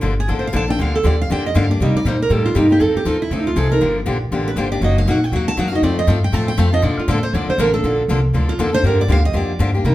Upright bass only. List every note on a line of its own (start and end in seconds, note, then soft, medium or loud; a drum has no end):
0.03 0.27 G1 medium
0.28 0.53 A1 medium
0.53 0.78 A#1 medium
0.79 1.03 D2 medium
1.04 1.29 D#2 medium
1.30 1.54 F2 medium
1.55 1.79 G2 medium
1.80 1.93 C3 medium
1.95 muted upright bass stroke soft
2.05 2.29 A#2 medium
2.30 2.54 A2 medium
2.55 2.79 G2 medium
2.80 2.94 F2 medium
2.94 muted upright bass stroke soft
3.05 3.30 D#2 medium
3.30 3.55 D2 medium
3.56 3.80 C2 medium
3.81 4.05 G1 medium
4.05 4.30 A#1 medium
4.31 4.55 A1 medium
4.56 4.81 G1 loud
4.81 5.05 F#1 medium
5.06 5.31 A#1 medium
5.32 5.56 D#2 medium
5.57 5.82 F#2 medium
5.82 6.07 F2 medium
6.07 6.32 G2 medium
6.33 6.57 A2 medium
6.58 6.82 F2 medium
6.83 6.96 A#2 medium
6.98 muted upright bass stroke soft
7.08 7.32 A2 medium
7.33 7.46 F2 medium
7.47 muted upright bass stroke soft
7.58 7.82 A1 loud
7.83 8.08 A#1 medium
8.08 8.32 C2 medium
8.33 8.58 D2 medium
8.58 8.82 F2 medium
8.83 9.08 G2 medium
9.08 9.33 D2 medium
9.34 9.58 F2 medium
9.59 9.83 G2 medium
9.84 9.95 C3 medium